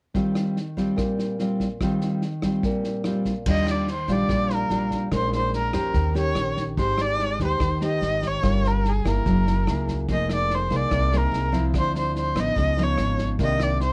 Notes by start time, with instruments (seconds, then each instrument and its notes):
0.14 nylon-string guitar D#3 G3 C4 F4, kick, snare
0.35 cross-stick, snare
0.57 snare
0.77 nylon-string guitar G3 C4 F4, kick, snare
0.96 nylon-string guitar A#2, kick, cross-stick, snare
1.19 snare
1.39 nylon-string guitar G3 C4 F4, snare
1.60 kick, snare
1.81 nylon-string guitar D#3 G3 C4 F4, kick, cross-stick, snare
2.01 snare
2.22 snare
2.42 nylon-string guitar G3 C4 F4, kick, cross-stick, snare
2.63 nylon-string guitar A#2, kick, snare
2.84 snare
3.04 nylon-string guitar G3 C4 F4, cross-stick, snare
3.25 kick, snare
3.46 upright bass D#2, nylon-string guitar D#3 G3 D4 F4, kick, snare, crash
3.51 erhu D#5
3.67 erhu D5, cross-stick, snare
3.88 snare
3.92 erhu C5
4.08 upright bass A#1, nylon-string guitar G3 D4 F4, erhu D5, kick, snare
4.28 upright bass A#1, nylon-string guitar A#2, kick, cross-stick, snare
4.50 snare
4.54 erhu A#4
4.70 upright bass A#1, nylon-string guitar G3 D4 F4, snare
4.91 kick, snare
5.11 upright bass A#1, nylon-string guitar A#2 G#3 C#4 D#4, kick, cross-stick, snare
5.15 erhu C5
5.33 snare
5.37 erhu C5
5.53 erhu A#4, snare
5.73 upright bass F2, nylon-string guitar C#4 G4 C5, erhu A#4, kick, cross-stick, snare
5.94 upright bass D#2, nylon-string guitar D#3, kick, snare
6.15 nylon-string guitar C#4 G4, erhu C#5, snare
6.35 upright bass A#1, cross-stick, snare
6.57 kick, snare
6.77 upright bass G#1, nylon-string guitar G#3 D#4 G4 C5, erhu C5, kick, snare
6.98 erhu D5, cross-stick, snare
7.19 snare
7.40 upright bass D#2, nylon-string guitar D#4 G4 C5, kick, snare
7.45 erhu C5
7.60 upright bass D#2, nylon-string guitar D#3, kick, cross-stick, snare
7.81 nylon-string guitar D#4 G4 C5, erhu D#5, snare
8.01 upright bass G#1, snare
8.22 kick, snare
8.27 erhu C#5
8.42 upright bass G1, nylon-string guitar G3 C#4 F4 A#4, kick, cross-stick, snare
8.64 erhu A#4, snare
8.85 erhu G#4, snare
9.05 upright bass G1, nylon-string guitar A#3 E4 G#4, erhu A#4, kick, cross-stick, snare
9.26 upright bass F#1, nylon-string guitar F#3, kick, snare
9.47 snare
9.67 upright bass C#2, nylon-string guitar A#3 E4 G#4, cross-stick, snare
9.88 kick, snare
10.08 upright bass F1, nylon-string guitar F3 A#3 D#4 G#4, kick, snare
10.13 erhu D#5
10.29 cross-stick, snare
10.35 erhu D5
10.50 snare
10.55 erhu C5
10.70 upright bass C2, nylon-string guitar A#3 D#4 G#4, kick, snare
10.76 erhu D5
10.91 upright bass C2, nylon-string guitar C3, kick, cross-stick, snare
11.12 nylon-string guitar A#3 D#4 G#4, snare
11.19 erhu A#4
11.32 upright bass C2, snare
11.52 nylon-string guitar F3 C4 E4, kick, snare
11.73 upright bass D2, nylon-string guitar D3, kick, cross-stick, snare
11.79 erhu C5
11.95 erhu C5, snare
12.16 snare
12.20 erhu C5
12.35 upright bass A1, nylon-string guitar F3 B3 D#4, kick, cross-stick, snare
12.39 erhu D#5
12.56 upright bass C#2, nylon-string guitar C#3, kick, snare
12.77 nylon-string guitar F3 B3 D#4, snare
12.83 erhu C#5
12.98 upright bass G#1, cross-stick, snare
13.18 kick, snare
13.39 upright bass C2, nylon-string guitar C3 D#3 A#3 D4, kick, snare
13.44 erhu D#5
13.60 erhu D5, cross-stick, snare
13.81 erhu C5, snare